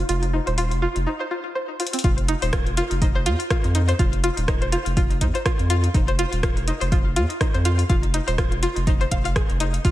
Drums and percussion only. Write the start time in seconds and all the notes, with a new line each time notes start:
0.09 closed hi-hat
0.23 closed hi-hat
0.47 closed hi-hat
0.58 closed hi-hat
0.71 closed hi-hat
0.96 closed hi-hat
1.80 closed hi-hat
1.87 closed hi-hat
1.93 closed hi-hat
1.99 closed hi-hat
2.04 kick
2.18 closed hi-hat
2.28 closed hi-hat
2.42 closed hi-hat
2.53 kick, cross-stick, closed hi-hat
2.67 closed hi-hat
2.77 closed hi-hat
2.91 closed hi-hat
3.02 kick, closed hi-hat
3.26 closed hi-hat
3.40 closed hi-hat
3.50 kick, cross-stick, closed hi-hat
3.64 closed hi-hat
3.75 closed hi-hat
3.89 closed hi-hat
3.99 kick, closed hi-hat
4.13 closed hi-hat
4.24 closed hi-hat
4.37 closed hi-hat
4.48 kick, cross-stick, closed hi-hat
4.62 closed hi-hat
4.72 closed hi-hat
4.86 closed hi-hat
4.97 kick, closed hi-hat
5.11 closed hi-hat
5.21 kick, closed hi-hat
5.35 closed hi-hat
5.46 kick, cross-stick, closed hi-hat
5.59 closed hi-hat
5.70 closed hi-hat
5.84 closed hi-hat
5.94 kick, closed hi-hat
6.08 closed hi-hat
6.19 closed hi-hat
6.33 closed hi-hat
6.43 kick, cross-stick, closed hi-hat
6.57 closed hi-hat
6.68 closed hi-hat
6.81 closed hi-hat
6.92 kick, closed hi-hat
7.16 closed hi-hat
7.30 closed hi-hat
7.41 kick, cross-stick, closed hi-hat
7.54 closed hi-hat
7.65 closed hi-hat
7.79 closed hi-hat
7.90 kick, closed hi-hat
8.03 closed hi-hat
8.14 closed hi-hat
8.28 closed hi-hat
8.38 kick, cross-stick, closed hi-hat
8.52 closed hi-hat
8.63 closed hi-hat
8.76 closed hi-hat
8.87 kick, closed hi-hat
9.01 closed hi-hat
9.11 kick, closed hi-hat
9.25 closed hi-hat
9.36 kick, cross-stick, closed hi-hat
9.50 closed hi-hat
9.60 closed hi-hat
9.74 closed hi-hat
9.85 kick, closed hi-hat